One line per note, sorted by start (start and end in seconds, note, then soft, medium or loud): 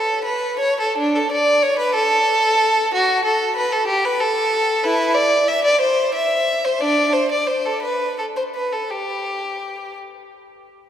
0.00 0.23 A4 medium
0.24 0.60 B4 medium
0.59 0.78 C#5 medium
0.80 0.97 A4 medium
0.97 1.14 D4 medium
1.15 1.31 A4 medium
1.31 1.63 D5 medium
1.62 1.79 C#5 medium
1.78 1.95 B4 medium
1.94 2.90 A4 medium
2.94 3.25 F#4 medium
3.25 3.55 A4 medium
3.56 3.71 B4 medium
3.72 3.87 A4 medium
3.87 4.03 G4 medium
4.04 4.20 B4 medium
4.20 4.83 A4 medium
4.83 5.13 E4 medium
4.83 5.14 B4 medium
5.14 5.47 D5 medium
5.48 5.64 E5 medium
5.64 5.80 D5 medium
5.81 6.13 C5 medium
6.14 6.62 E5 medium
6.65 6.80 C5 medium
6.80 7.11 D4 medium
6.80 7.13 D5 medium
7.12 7.30 C5 medium
7.31 7.48 D5 medium
7.47 7.65 C5 medium
7.65 7.83 A4 medium
7.82 8.17 B4 medium
8.18 8.25 A4 medium
8.36 8.43 C5 medium
8.55 8.71 B4 medium
8.72 8.90 A4 soft
8.90 9.96 G4 medium